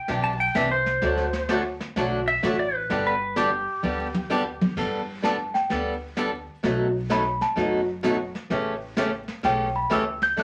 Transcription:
Already playing: electric slide guitar G5
0.08 upright bass B1, steel-string acoustic guitar C3 E3 D4 G4, brush sweep, snare
0.24 electric slide guitar A5
0.40 electric slide guitar G5
0.55 upright bass C2, steel-string acoustic guitar C3 E3 D4 G4, electric slide guitar E5, snare, hi-hat pedal
0.71 electric slide guitar C5
0.86 snare
1.01 upright bass D2, steel-string acoustic guitar D3 F#3 A3 D4 F#4, brush sweep, snare
1.17 snare
1.33 snare
1.49 steel-string acoustic guitar D3 F#3 A3 D4 F#4, snare, hi-hat pedal
1.80 snare
1.96 upright bass B1, steel-string acoustic guitar D3 F#3 A3 D4 F#4, brush sweep, snare
2.28 electric slide guitar E5
2.43 upright bass A1, steel-string acoustic guitar D3 F#3 A3 D4 F#4, snare, hi-hat pedal
2.59 electric slide guitar D5
2.75 electric slide guitar B4
2.89 upright bass G1, steel-string acoustic guitar D3 G3 B3 D4 G4, brush sweep, snare
3.07 electric slide guitar B4
3.36 steel-string acoustic guitar D3 G3 B3 D4 G4, electric slide guitar G4, snare, hi-hat pedal
3.83 upright bass D2, steel-string acoustic guitar D3 G3 B3 D4 G4, high tom
4.14 high tom
4.30 steel-string acoustic guitar D3 G3 B3 D4 G4, hi-hat pedal, high tom
4.61 high tom
4.77 upright bass G1, steel-string acoustic guitar G3 B3 D4 A4, brush sweep, kick, snare, crash
5.22 steel-string acoustic guitar G3 B3 D4 A4, celesta A5, snare, hi-hat pedal
5.54 celesta G5, snare
5.70 upright bass D2, steel-string acoustic guitar G3 B3 D4 A4, brush sweep, snare
6.17 steel-string acoustic guitar G3 B3 D4 A4, snare, hi-hat pedal
6.63 upright bass B1, steel-string acoustic guitar B2 F#3 A3 D#4 F#4, brush sweep, snare
7.10 steel-string acoustic guitar B2 F#3 A3 D#4 F#4, celesta B5, snare, hi-hat pedal
7.41 celesta A5, snare
7.56 upright bass F#1, steel-string acoustic guitar B2 F#3 A3 D#4 F#4, brush sweep, snare
8.03 steel-string acoustic guitar B2 F#3 A3 D#4 F#4, snare, hi-hat pedal
8.35 snare
8.50 upright bass A1, steel-string acoustic guitar C#3 E3 A3 C#4 G4, brush sweep, snare
8.97 steel-string acoustic guitar C#3 E3 A3 C#4 G4, snare, hi-hat pedal
9.28 snare
9.43 upright bass B1, steel-string acoustic guitar C#3 E3 A3 C#4 G4, celesta G5, brush sweep, snare
9.76 celesta B5
9.90 upright bass C#2, steel-string acoustic guitar C#3 E3 A3 C#4 G4, celesta E6, snare, hi-hat pedal
10.22 celesta G6, snare
10.36 upright bass D2, steel-string acoustic guitar D3 F#3 A3 D4 F#4, celesta F#6, brush sweep, snare

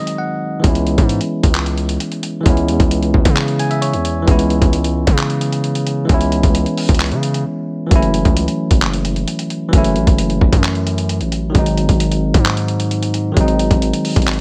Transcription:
Already playing: tine electric piano D#3 F#3 G#3 C4 D#4 D#5
0.07 closed hi-hat
0.18 tine electric piano F#5
0.60 tine electric piano E3 G#3
0.64 808-style bass C#2, tine electric piano B3 C#4, kick, closed hi-hat
0.69 tine electric piano E4
0.75 closed hi-hat
0.87 closed hi-hat
0.98 808-style bass G#2, kick, closed hi-hat
1.09 closed hi-hat
1.21 closed hi-hat
1.43 808-style bass C#2, kick, closed hi-hat
1.55 clap, closed hi-hat
1.66 closed hi-hat
1.78 closed hi-hat
1.89 closed hi-hat
2.00 closed hi-hat
2.12 closed hi-hat
2.23 closed hi-hat
2.41 tine electric piano E3 G#3
2.45 808-style bass C#2, tine electric piano B3 C#4, kick, closed hi-hat
2.50 tine electric piano E4
2.57 closed hi-hat
2.68 808-style bass E2, closed hi-hat
2.80 808-style bass C#2, kick, closed hi-hat
2.91 closed hi-hat
3.03 closed hi-hat
3.14 808-style bass C#2, kick
3.25 808-style bass C#3, kick, closed hi-hat
3.37 clap, closed hi-hat
3.48 closed hi-hat
3.59 tine electric piano G#5, closed hi-hat
3.71 tine electric piano E5, closed hi-hat
3.82 tine electric piano C#5, closed hi-hat
3.93 808-style bass E2, closed hi-hat
4.05 closed hi-hat
4.22 tine electric piano E3 G#3
4.27 808-style bass C#2, tine electric piano B3 C#4, kick, closed hi-hat
4.31 tine electric piano E4
4.39 closed hi-hat
4.50 closed hi-hat
4.62 808-style bass C#2, kick, closed hi-hat
4.73 closed hi-hat
4.84 closed hi-hat
5.07 808-style bass C#3, kick, closed hi-hat
5.18 clap, closed hi-hat
5.30 closed hi-hat
5.41 closed hi-hat
5.52 closed hi-hat
5.64 closed hi-hat
5.75 closed hi-hat
5.87 closed hi-hat
6.05 tine electric piano E3 G#3
6.09 808-style bass C#2, tine electric piano B3 C#4, kick, closed hi-hat
6.14 tine electric piano E4
6.21 closed hi-hat
6.32 closed hi-hat
6.43 808-style bass C#2, kick, closed hi-hat
6.55 closed hi-hat
6.66 closed hi-hat
6.77 open hi-hat
6.89 808-style bass C#2, kick, closed hi-hat
6.94 closed hi-hat
7.00 clap, closed hi-hat
7.06 closed hi-hat
7.12 808-style bass C#3, closed hi-hat
7.23 closed hi-hat
7.34 closed hi-hat
7.87 tine electric piano E3 F#3
7.91 808-style bass F#1, tine electric piano A3 C#4, kick, closed hi-hat
7.96 tine electric piano E4
8.02 closed hi-hat
8.14 closed hi-hat
8.25 808-style bass C#2, kick, closed hi-hat
8.37 closed hi-hat
8.48 closed hi-hat
8.71 808-style bass F#1, kick, closed hi-hat
8.82 clap, closed hi-hat
8.93 closed hi-hat
9.05 closed hi-hat
9.16 closed hi-hat
9.28 closed hi-hat
9.39 closed hi-hat
9.50 closed hi-hat
9.69 tine electric piano E3 F#3
9.73 808-style bass F#1, tine electric piano A3 C#4, kick, closed hi-hat
9.78 tine electric piano E4
9.84 closed hi-hat
9.96 808-style bass A1, closed hi-hat
10.07 808-style bass F#1, kick, closed hi-hat
10.18 closed hi-hat
10.30 closed hi-hat
10.41 808-style bass F#1, kick
10.53 808-style bass F#2, kick, closed hi-hat
10.64 clap, closed hi-hat
10.75 closed hi-hat
10.87 closed hi-hat
10.98 closed hi-hat
11.09 closed hi-hat
11.21 808-style bass A1, closed hi-hat
11.32 closed hi-hat
11.50 tine electric piano D#3 F#3
11.54 808-style bass G#1, tine electric piano G#3 C4, kick, closed hi-hat
11.59 tine electric piano D#4
11.66 closed hi-hat
11.77 closed hi-hat
11.89 808-style bass G#1, kick, closed hi-hat
12.00 closed hi-hat
12.12 closed hi-hat
12.34 808-style bass G#2, kick, closed hi-hat
12.46 clap, closed hi-hat
12.57 closed hi-hat
12.68 closed hi-hat
12.80 closed hi-hat
12.91 closed hi-hat
13.03 closed hi-hat
13.14 closed hi-hat
13.32 tine electric piano D#3 F#3
13.36 808-style bass G#1, tine electric piano G#3 C4, kick, closed hi-hat
13.41 tine electric piano D#4
13.48 closed hi-hat
13.59 closed hi-hat
13.71 808-style bass G#1, kick, closed hi-hat
13.82 closed hi-hat
13.93 closed hi-hat
14.05 open hi-hat
14.16 808-style bass G#1, kick, closed hi-hat
14.22 closed hi-hat
14.28 clap, closed hi-hat
14.33 closed hi-hat

